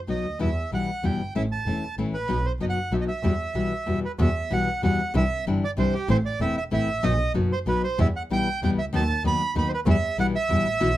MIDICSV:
0, 0, Header, 1, 4, 480
1, 0, Start_track
1, 0, Key_signature, 1, "minor"
1, 0, Tempo, 315623
1, 602, Time_signature, 3, 2, 24, 8
1, 16686, End_track
2, 0, Start_track
2, 0, Title_t, "Bandoneon"
2, 0, Program_c, 0, 23
2, 148, Note_on_c, 0, 75, 66
2, 587, Note_off_c, 0, 75, 0
2, 635, Note_on_c, 0, 76, 73
2, 1073, Note_off_c, 0, 76, 0
2, 1128, Note_on_c, 0, 78, 83
2, 1598, Note_on_c, 0, 79, 66
2, 1607, Note_off_c, 0, 78, 0
2, 2034, Note_off_c, 0, 79, 0
2, 2068, Note_on_c, 0, 76, 76
2, 2173, Note_off_c, 0, 76, 0
2, 2308, Note_on_c, 0, 81, 78
2, 2970, Note_off_c, 0, 81, 0
2, 3253, Note_on_c, 0, 71, 79
2, 3732, Note_on_c, 0, 72, 71
2, 3741, Note_off_c, 0, 71, 0
2, 3838, Note_off_c, 0, 72, 0
2, 3984, Note_on_c, 0, 75, 73
2, 4033, Note_off_c, 0, 75, 0
2, 4095, Note_on_c, 0, 78, 80
2, 4457, Note_off_c, 0, 78, 0
2, 4458, Note_on_c, 0, 76, 69
2, 4508, Note_off_c, 0, 76, 0
2, 4579, Note_on_c, 0, 75, 68
2, 4629, Note_off_c, 0, 75, 0
2, 4685, Note_on_c, 0, 76, 79
2, 6075, Note_off_c, 0, 76, 0
2, 6160, Note_on_c, 0, 71, 64
2, 6264, Note_off_c, 0, 71, 0
2, 6404, Note_on_c, 0, 76, 82
2, 6886, Note_on_c, 0, 78, 84
2, 6890, Note_off_c, 0, 76, 0
2, 7322, Note_off_c, 0, 78, 0
2, 7362, Note_on_c, 0, 78, 80
2, 7800, Note_off_c, 0, 78, 0
2, 7855, Note_on_c, 0, 76, 92
2, 8288, Note_off_c, 0, 76, 0
2, 8585, Note_on_c, 0, 74, 89
2, 8683, Note_off_c, 0, 74, 0
2, 8803, Note_on_c, 0, 72, 75
2, 9037, Note_on_c, 0, 67, 80
2, 9038, Note_off_c, 0, 72, 0
2, 9251, Note_off_c, 0, 67, 0
2, 9283, Note_on_c, 0, 72, 94
2, 9384, Note_off_c, 0, 72, 0
2, 9514, Note_on_c, 0, 74, 85
2, 9726, Note_off_c, 0, 74, 0
2, 9756, Note_on_c, 0, 76, 86
2, 9974, Note_off_c, 0, 76, 0
2, 9997, Note_on_c, 0, 76, 87
2, 10097, Note_off_c, 0, 76, 0
2, 10242, Note_on_c, 0, 76, 93
2, 10699, Note_on_c, 0, 75, 97
2, 10714, Note_off_c, 0, 76, 0
2, 11139, Note_off_c, 0, 75, 0
2, 11443, Note_on_c, 0, 72, 80
2, 11545, Note_off_c, 0, 72, 0
2, 11683, Note_on_c, 0, 71, 78
2, 11894, Note_off_c, 0, 71, 0
2, 11917, Note_on_c, 0, 72, 78
2, 12156, Note_off_c, 0, 72, 0
2, 12178, Note_on_c, 0, 76, 92
2, 12278, Note_off_c, 0, 76, 0
2, 12411, Note_on_c, 0, 78, 81
2, 12513, Note_off_c, 0, 78, 0
2, 12661, Note_on_c, 0, 79, 102
2, 13087, Note_off_c, 0, 79, 0
2, 13140, Note_on_c, 0, 79, 81
2, 13238, Note_off_c, 0, 79, 0
2, 13359, Note_on_c, 0, 76, 85
2, 13462, Note_off_c, 0, 76, 0
2, 13618, Note_on_c, 0, 81, 97
2, 14041, Note_off_c, 0, 81, 0
2, 14099, Note_on_c, 0, 83, 106
2, 14517, Note_off_c, 0, 83, 0
2, 14573, Note_on_c, 0, 83, 91
2, 14729, Note_on_c, 0, 72, 65
2, 14731, Note_off_c, 0, 83, 0
2, 14775, Note_off_c, 0, 72, 0
2, 14813, Note_on_c, 0, 71, 82
2, 14908, Note_off_c, 0, 71, 0
2, 15057, Note_on_c, 0, 76, 103
2, 15472, Note_off_c, 0, 76, 0
2, 15513, Note_on_c, 0, 78, 101
2, 15612, Note_off_c, 0, 78, 0
2, 15747, Note_on_c, 0, 76, 120
2, 16686, Note_off_c, 0, 76, 0
2, 16686, End_track
3, 0, Start_track
3, 0, Title_t, "Nylon-string guitar"
3, 0, Program_c, 1, 24
3, 111, Note_on_c, 1, 47, 51
3, 120, Note_on_c, 1, 54, 54
3, 126, Note_on_c, 1, 59, 58
3, 126, Note_on_c, 1, 63, 58
3, 134, Note_on_c, 1, 66, 56
3, 375, Note_off_c, 1, 47, 0
3, 379, Note_off_c, 1, 54, 0
3, 382, Note_off_c, 1, 59, 0
3, 382, Note_off_c, 1, 63, 0
3, 386, Note_off_c, 1, 66, 0
3, 594, Note_on_c, 1, 47, 64
3, 600, Note_on_c, 1, 52, 68
3, 605, Note_on_c, 1, 55, 66
3, 610, Note_on_c, 1, 59, 72
3, 615, Note_on_c, 1, 64, 76
3, 736, Note_off_c, 1, 47, 0
3, 739, Note_off_c, 1, 52, 0
3, 742, Note_off_c, 1, 55, 0
3, 744, Note_off_c, 1, 59, 0
3, 747, Note_off_c, 1, 64, 0
3, 1089, Note_on_c, 1, 47, 55
3, 1100, Note_on_c, 1, 52, 53
3, 1103, Note_on_c, 1, 55, 57
3, 1104, Note_on_c, 1, 59, 59
3, 1107, Note_on_c, 1, 64, 55
3, 1350, Note_off_c, 1, 47, 0
3, 1355, Note_off_c, 1, 52, 0
3, 1357, Note_off_c, 1, 55, 0
3, 1357, Note_off_c, 1, 59, 0
3, 1359, Note_off_c, 1, 64, 0
3, 1569, Note_on_c, 1, 52, 60
3, 1574, Note_on_c, 1, 47, 53
3, 1579, Note_on_c, 1, 55, 64
3, 1579, Note_on_c, 1, 59, 69
3, 1589, Note_on_c, 1, 64, 61
3, 1828, Note_off_c, 1, 52, 0
3, 1831, Note_off_c, 1, 47, 0
3, 1834, Note_off_c, 1, 55, 0
3, 1834, Note_off_c, 1, 59, 0
3, 1839, Note_off_c, 1, 64, 0
3, 2053, Note_on_c, 1, 52, 69
3, 2059, Note_on_c, 1, 57, 74
3, 2066, Note_on_c, 1, 64, 85
3, 2067, Note_on_c, 1, 61, 70
3, 2190, Note_off_c, 1, 52, 0
3, 2193, Note_off_c, 1, 57, 0
3, 2197, Note_off_c, 1, 61, 0
3, 2197, Note_off_c, 1, 64, 0
3, 2528, Note_on_c, 1, 52, 55
3, 2541, Note_on_c, 1, 57, 59
3, 2547, Note_on_c, 1, 61, 65
3, 2551, Note_on_c, 1, 64, 57
3, 2788, Note_off_c, 1, 52, 0
3, 2794, Note_off_c, 1, 57, 0
3, 2798, Note_off_c, 1, 61, 0
3, 2799, Note_off_c, 1, 64, 0
3, 3010, Note_on_c, 1, 52, 64
3, 3017, Note_on_c, 1, 57, 66
3, 3021, Note_on_c, 1, 61, 66
3, 3025, Note_on_c, 1, 64, 60
3, 3266, Note_off_c, 1, 52, 0
3, 3270, Note_off_c, 1, 57, 0
3, 3272, Note_off_c, 1, 61, 0
3, 3274, Note_off_c, 1, 64, 0
3, 3466, Note_on_c, 1, 47, 79
3, 3469, Note_on_c, 1, 54, 72
3, 3478, Note_on_c, 1, 59, 67
3, 3488, Note_on_c, 1, 63, 80
3, 3489, Note_on_c, 1, 66, 85
3, 3612, Note_off_c, 1, 47, 0
3, 3614, Note_off_c, 1, 54, 0
3, 3618, Note_off_c, 1, 59, 0
3, 3623, Note_off_c, 1, 63, 0
3, 3623, Note_off_c, 1, 66, 0
3, 3958, Note_on_c, 1, 47, 59
3, 3961, Note_on_c, 1, 54, 56
3, 3963, Note_on_c, 1, 59, 62
3, 3971, Note_on_c, 1, 63, 67
3, 3975, Note_on_c, 1, 66, 61
3, 4216, Note_off_c, 1, 47, 0
3, 4217, Note_off_c, 1, 54, 0
3, 4218, Note_off_c, 1, 59, 0
3, 4222, Note_off_c, 1, 63, 0
3, 4224, Note_off_c, 1, 66, 0
3, 4434, Note_on_c, 1, 47, 61
3, 4439, Note_on_c, 1, 54, 60
3, 4442, Note_on_c, 1, 59, 62
3, 4448, Note_on_c, 1, 63, 62
3, 4452, Note_on_c, 1, 66, 66
3, 4694, Note_off_c, 1, 47, 0
3, 4697, Note_off_c, 1, 54, 0
3, 4698, Note_off_c, 1, 59, 0
3, 4701, Note_off_c, 1, 63, 0
3, 4703, Note_off_c, 1, 66, 0
3, 4920, Note_on_c, 1, 47, 70
3, 4921, Note_on_c, 1, 55, 73
3, 4923, Note_on_c, 1, 52, 68
3, 4935, Note_on_c, 1, 66, 85
3, 4937, Note_on_c, 1, 59, 78
3, 5057, Note_off_c, 1, 47, 0
3, 5058, Note_off_c, 1, 55, 0
3, 5059, Note_off_c, 1, 52, 0
3, 5065, Note_off_c, 1, 66, 0
3, 5066, Note_off_c, 1, 59, 0
3, 5392, Note_on_c, 1, 47, 54
3, 5394, Note_on_c, 1, 52, 53
3, 5396, Note_on_c, 1, 55, 60
3, 5402, Note_on_c, 1, 59, 54
3, 5403, Note_on_c, 1, 66, 61
3, 5656, Note_off_c, 1, 47, 0
3, 5657, Note_off_c, 1, 52, 0
3, 5658, Note_off_c, 1, 55, 0
3, 5661, Note_off_c, 1, 59, 0
3, 5662, Note_off_c, 1, 66, 0
3, 5872, Note_on_c, 1, 47, 55
3, 5880, Note_on_c, 1, 55, 57
3, 5884, Note_on_c, 1, 52, 54
3, 5887, Note_on_c, 1, 59, 51
3, 5894, Note_on_c, 1, 66, 54
3, 6143, Note_off_c, 1, 47, 0
3, 6147, Note_off_c, 1, 55, 0
3, 6149, Note_off_c, 1, 52, 0
3, 6151, Note_off_c, 1, 59, 0
3, 6154, Note_off_c, 1, 66, 0
3, 6368, Note_on_c, 1, 47, 78
3, 6369, Note_on_c, 1, 52, 79
3, 6370, Note_on_c, 1, 55, 78
3, 6376, Note_on_c, 1, 59, 86
3, 6379, Note_on_c, 1, 66, 93
3, 6511, Note_off_c, 1, 47, 0
3, 6511, Note_off_c, 1, 52, 0
3, 6512, Note_off_c, 1, 55, 0
3, 6515, Note_off_c, 1, 59, 0
3, 6516, Note_off_c, 1, 66, 0
3, 6851, Note_on_c, 1, 47, 62
3, 6851, Note_on_c, 1, 52, 65
3, 6861, Note_on_c, 1, 55, 59
3, 6866, Note_on_c, 1, 59, 70
3, 6875, Note_on_c, 1, 66, 66
3, 7114, Note_off_c, 1, 47, 0
3, 7114, Note_off_c, 1, 52, 0
3, 7119, Note_off_c, 1, 55, 0
3, 7122, Note_off_c, 1, 59, 0
3, 7126, Note_off_c, 1, 66, 0
3, 7328, Note_on_c, 1, 47, 66
3, 7345, Note_on_c, 1, 52, 73
3, 7345, Note_on_c, 1, 55, 73
3, 7352, Note_on_c, 1, 59, 71
3, 7356, Note_on_c, 1, 66, 72
3, 7593, Note_off_c, 1, 47, 0
3, 7601, Note_off_c, 1, 52, 0
3, 7601, Note_off_c, 1, 55, 0
3, 7605, Note_off_c, 1, 59, 0
3, 7607, Note_off_c, 1, 66, 0
3, 7812, Note_on_c, 1, 48, 79
3, 7813, Note_on_c, 1, 52, 74
3, 7820, Note_on_c, 1, 55, 80
3, 7824, Note_on_c, 1, 62, 93
3, 7835, Note_on_c, 1, 64, 97
3, 7954, Note_off_c, 1, 48, 0
3, 7955, Note_off_c, 1, 52, 0
3, 7958, Note_off_c, 1, 55, 0
3, 7960, Note_off_c, 1, 62, 0
3, 7966, Note_off_c, 1, 64, 0
3, 8315, Note_on_c, 1, 48, 59
3, 8316, Note_on_c, 1, 52, 58
3, 8317, Note_on_c, 1, 55, 68
3, 8327, Note_on_c, 1, 64, 70
3, 8332, Note_on_c, 1, 62, 72
3, 8567, Note_off_c, 1, 48, 0
3, 8567, Note_off_c, 1, 52, 0
3, 8568, Note_off_c, 1, 55, 0
3, 8572, Note_off_c, 1, 64, 0
3, 8575, Note_off_c, 1, 62, 0
3, 8771, Note_on_c, 1, 48, 69
3, 8785, Note_on_c, 1, 52, 60
3, 8787, Note_on_c, 1, 55, 71
3, 8790, Note_on_c, 1, 62, 70
3, 8793, Note_on_c, 1, 64, 70
3, 9032, Note_off_c, 1, 48, 0
3, 9039, Note_off_c, 1, 52, 0
3, 9040, Note_off_c, 1, 55, 0
3, 9042, Note_off_c, 1, 62, 0
3, 9043, Note_off_c, 1, 64, 0
3, 9251, Note_on_c, 1, 52, 91
3, 9257, Note_on_c, 1, 57, 89
3, 9260, Note_on_c, 1, 60, 92
3, 9274, Note_on_c, 1, 64, 100
3, 9389, Note_off_c, 1, 52, 0
3, 9393, Note_off_c, 1, 57, 0
3, 9394, Note_off_c, 1, 60, 0
3, 9401, Note_off_c, 1, 64, 0
3, 9732, Note_on_c, 1, 52, 71
3, 9738, Note_on_c, 1, 57, 62
3, 9752, Note_on_c, 1, 60, 75
3, 9757, Note_on_c, 1, 64, 81
3, 9986, Note_off_c, 1, 52, 0
3, 9989, Note_off_c, 1, 57, 0
3, 9996, Note_off_c, 1, 60, 0
3, 9999, Note_off_c, 1, 64, 0
3, 10205, Note_on_c, 1, 52, 72
3, 10212, Note_on_c, 1, 60, 69
3, 10213, Note_on_c, 1, 57, 73
3, 10225, Note_on_c, 1, 64, 75
3, 10460, Note_off_c, 1, 52, 0
3, 10463, Note_off_c, 1, 57, 0
3, 10463, Note_off_c, 1, 60, 0
3, 10469, Note_off_c, 1, 64, 0
3, 10690, Note_on_c, 1, 54, 87
3, 10691, Note_on_c, 1, 47, 90
3, 10701, Note_on_c, 1, 59, 86
3, 10704, Note_on_c, 1, 63, 91
3, 10709, Note_on_c, 1, 66, 95
3, 10823, Note_off_c, 1, 47, 0
3, 10823, Note_off_c, 1, 54, 0
3, 10829, Note_off_c, 1, 59, 0
3, 10830, Note_off_c, 1, 63, 0
3, 10832, Note_off_c, 1, 66, 0
3, 11165, Note_on_c, 1, 47, 58
3, 11172, Note_on_c, 1, 54, 63
3, 11174, Note_on_c, 1, 59, 61
3, 11179, Note_on_c, 1, 63, 62
3, 11180, Note_on_c, 1, 66, 64
3, 11423, Note_off_c, 1, 47, 0
3, 11427, Note_off_c, 1, 54, 0
3, 11428, Note_off_c, 1, 59, 0
3, 11430, Note_off_c, 1, 63, 0
3, 11431, Note_off_c, 1, 66, 0
3, 11649, Note_on_c, 1, 47, 62
3, 11658, Note_on_c, 1, 54, 60
3, 11661, Note_on_c, 1, 59, 68
3, 11668, Note_on_c, 1, 63, 66
3, 11672, Note_on_c, 1, 66, 63
3, 11911, Note_off_c, 1, 47, 0
3, 11916, Note_off_c, 1, 54, 0
3, 11917, Note_off_c, 1, 59, 0
3, 11921, Note_off_c, 1, 63, 0
3, 11922, Note_off_c, 1, 66, 0
3, 12139, Note_on_c, 1, 47, 89
3, 12146, Note_on_c, 1, 52, 75
3, 12148, Note_on_c, 1, 55, 82
3, 12148, Note_on_c, 1, 59, 79
3, 12156, Note_on_c, 1, 64, 84
3, 12276, Note_off_c, 1, 47, 0
3, 12280, Note_off_c, 1, 52, 0
3, 12281, Note_off_c, 1, 55, 0
3, 12281, Note_off_c, 1, 59, 0
3, 12285, Note_off_c, 1, 64, 0
3, 12629, Note_on_c, 1, 47, 64
3, 12636, Note_on_c, 1, 52, 57
3, 12640, Note_on_c, 1, 55, 63
3, 12640, Note_on_c, 1, 64, 66
3, 12642, Note_on_c, 1, 59, 62
3, 12882, Note_off_c, 1, 47, 0
3, 12885, Note_off_c, 1, 52, 0
3, 12887, Note_off_c, 1, 55, 0
3, 12887, Note_off_c, 1, 64, 0
3, 12888, Note_off_c, 1, 59, 0
3, 13112, Note_on_c, 1, 47, 58
3, 13122, Note_on_c, 1, 52, 65
3, 13129, Note_on_c, 1, 55, 72
3, 13134, Note_on_c, 1, 64, 70
3, 13137, Note_on_c, 1, 59, 78
3, 13362, Note_off_c, 1, 47, 0
3, 13367, Note_off_c, 1, 52, 0
3, 13370, Note_off_c, 1, 55, 0
3, 13373, Note_off_c, 1, 64, 0
3, 13374, Note_off_c, 1, 59, 0
3, 13575, Note_on_c, 1, 51, 84
3, 13590, Note_on_c, 1, 54, 78
3, 13590, Note_on_c, 1, 59, 84
3, 13592, Note_on_c, 1, 63, 89
3, 13598, Note_on_c, 1, 71, 91
3, 13712, Note_off_c, 1, 51, 0
3, 13719, Note_off_c, 1, 54, 0
3, 13719, Note_off_c, 1, 59, 0
3, 13720, Note_off_c, 1, 63, 0
3, 13723, Note_off_c, 1, 71, 0
3, 14050, Note_on_c, 1, 51, 64
3, 14055, Note_on_c, 1, 54, 65
3, 14066, Note_on_c, 1, 59, 68
3, 14070, Note_on_c, 1, 63, 76
3, 14070, Note_on_c, 1, 71, 66
3, 14304, Note_off_c, 1, 51, 0
3, 14307, Note_off_c, 1, 54, 0
3, 14312, Note_off_c, 1, 59, 0
3, 14314, Note_off_c, 1, 63, 0
3, 14314, Note_off_c, 1, 71, 0
3, 14525, Note_on_c, 1, 54, 69
3, 14529, Note_on_c, 1, 51, 66
3, 14535, Note_on_c, 1, 63, 81
3, 14539, Note_on_c, 1, 59, 62
3, 14543, Note_on_c, 1, 71, 70
3, 14778, Note_off_c, 1, 54, 0
3, 14780, Note_off_c, 1, 51, 0
3, 14783, Note_off_c, 1, 63, 0
3, 14785, Note_off_c, 1, 59, 0
3, 14787, Note_off_c, 1, 71, 0
3, 14993, Note_on_c, 1, 47, 79
3, 14999, Note_on_c, 1, 52, 91
3, 15000, Note_on_c, 1, 55, 87
3, 15004, Note_on_c, 1, 59, 87
3, 15011, Note_on_c, 1, 64, 97
3, 15130, Note_off_c, 1, 47, 0
3, 15133, Note_off_c, 1, 52, 0
3, 15134, Note_off_c, 1, 55, 0
3, 15136, Note_off_c, 1, 59, 0
3, 15139, Note_off_c, 1, 64, 0
3, 15480, Note_on_c, 1, 47, 67
3, 15486, Note_on_c, 1, 52, 75
3, 15489, Note_on_c, 1, 59, 80
3, 15495, Note_on_c, 1, 55, 78
3, 15499, Note_on_c, 1, 64, 72
3, 15733, Note_off_c, 1, 47, 0
3, 15736, Note_off_c, 1, 52, 0
3, 15738, Note_off_c, 1, 59, 0
3, 15741, Note_off_c, 1, 55, 0
3, 15743, Note_off_c, 1, 64, 0
3, 15951, Note_on_c, 1, 47, 63
3, 15959, Note_on_c, 1, 55, 74
3, 15960, Note_on_c, 1, 52, 65
3, 15968, Note_on_c, 1, 59, 70
3, 15972, Note_on_c, 1, 64, 78
3, 16210, Note_off_c, 1, 47, 0
3, 16214, Note_off_c, 1, 55, 0
3, 16215, Note_off_c, 1, 52, 0
3, 16219, Note_off_c, 1, 59, 0
3, 16221, Note_off_c, 1, 64, 0
3, 16428, Note_on_c, 1, 47, 69
3, 16432, Note_on_c, 1, 52, 89
3, 16434, Note_on_c, 1, 59, 95
3, 16437, Note_on_c, 1, 64, 82
3, 16441, Note_on_c, 1, 66, 93
3, 16567, Note_off_c, 1, 47, 0
3, 16569, Note_off_c, 1, 52, 0
3, 16570, Note_off_c, 1, 59, 0
3, 16571, Note_off_c, 1, 64, 0
3, 16573, Note_off_c, 1, 66, 0
3, 16686, End_track
4, 0, Start_track
4, 0, Title_t, "Double bass"
4, 0, Program_c, 2, 43
4, 122, Note_on_c, 2, 35, 53
4, 324, Note_off_c, 2, 35, 0
4, 370, Note_on_c, 2, 38, 42
4, 597, Note_off_c, 2, 38, 0
4, 606, Note_on_c, 2, 40, 84
4, 809, Note_off_c, 2, 40, 0
4, 1093, Note_on_c, 2, 35, 44
4, 1296, Note_off_c, 2, 35, 0
4, 1570, Note_on_c, 2, 40, 50
4, 1773, Note_off_c, 2, 40, 0
4, 1808, Note_on_c, 2, 31, 46
4, 2032, Note_off_c, 2, 31, 0
4, 2041, Note_on_c, 2, 33, 84
4, 2250, Note_off_c, 2, 33, 0
4, 2526, Note_on_c, 2, 28, 48
4, 2732, Note_off_c, 2, 28, 0
4, 3001, Note_on_c, 2, 33, 51
4, 3207, Note_off_c, 2, 33, 0
4, 3244, Note_on_c, 2, 33, 55
4, 3466, Note_off_c, 2, 33, 0
4, 3475, Note_on_c, 2, 35, 87
4, 3682, Note_off_c, 2, 35, 0
4, 3947, Note_on_c, 2, 30, 54
4, 4156, Note_off_c, 2, 30, 0
4, 4429, Note_on_c, 2, 35, 54
4, 4637, Note_off_c, 2, 35, 0
4, 4912, Note_on_c, 2, 40, 84
4, 5119, Note_off_c, 2, 40, 0
4, 5392, Note_on_c, 2, 35, 50
4, 5600, Note_off_c, 2, 35, 0
4, 5882, Note_on_c, 2, 40, 51
4, 6091, Note_off_c, 2, 40, 0
4, 6372, Note_on_c, 2, 40, 86
4, 6579, Note_off_c, 2, 40, 0
4, 6864, Note_on_c, 2, 35, 52
4, 7065, Note_off_c, 2, 35, 0
4, 7344, Note_on_c, 2, 40, 60
4, 7545, Note_off_c, 2, 40, 0
4, 7825, Note_on_c, 2, 36, 88
4, 8026, Note_off_c, 2, 36, 0
4, 8307, Note_on_c, 2, 31, 57
4, 8507, Note_off_c, 2, 31, 0
4, 8785, Note_on_c, 2, 36, 67
4, 8984, Note_off_c, 2, 36, 0
4, 9261, Note_on_c, 2, 33, 103
4, 9459, Note_off_c, 2, 33, 0
4, 9739, Note_on_c, 2, 28, 57
4, 9935, Note_off_c, 2, 28, 0
4, 10216, Note_on_c, 2, 33, 63
4, 10410, Note_off_c, 2, 33, 0
4, 10452, Note_on_c, 2, 33, 60
4, 10678, Note_off_c, 2, 33, 0
4, 10687, Note_on_c, 2, 35, 92
4, 10887, Note_off_c, 2, 35, 0
4, 11172, Note_on_c, 2, 30, 57
4, 11371, Note_off_c, 2, 30, 0
4, 11658, Note_on_c, 2, 35, 57
4, 11859, Note_off_c, 2, 35, 0
4, 12148, Note_on_c, 2, 40, 87
4, 12347, Note_off_c, 2, 40, 0
4, 12633, Note_on_c, 2, 35, 53
4, 12829, Note_off_c, 2, 35, 0
4, 13113, Note_on_c, 2, 40, 57
4, 13307, Note_off_c, 2, 40, 0
4, 13347, Note_on_c, 2, 37, 52
4, 13568, Note_off_c, 2, 37, 0
4, 13577, Note_on_c, 2, 39, 88
4, 13778, Note_off_c, 2, 39, 0
4, 14049, Note_on_c, 2, 39, 60
4, 14249, Note_off_c, 2, 39, 0
4, 14524, Note_on_c, 2, 39, 64
4, 14723, Note_off_c, 2, 39, 0
4, 14993, Note_on_c, 2, 40, 101
4, 15196, Note_off_c, 2, 40, 0
4, 15468, Note_on_c, 2, 35, 54
4, 15672, Note_off_c, 2, 35, 0
4, 15955, Note_on_c, 2, 40, 60
4, 16157, Note_off_c, 2, 40, 0
4, 16189, Note_on_c, 2, 33, 57
4, 16420, Note_off_c, 2, 33, 0
4, 16429, Note_on_c, 2, 35, 98
4, 16632, Note_off_c, 2, 35, 0
4, 16686, End_track
0, 0, End_of_file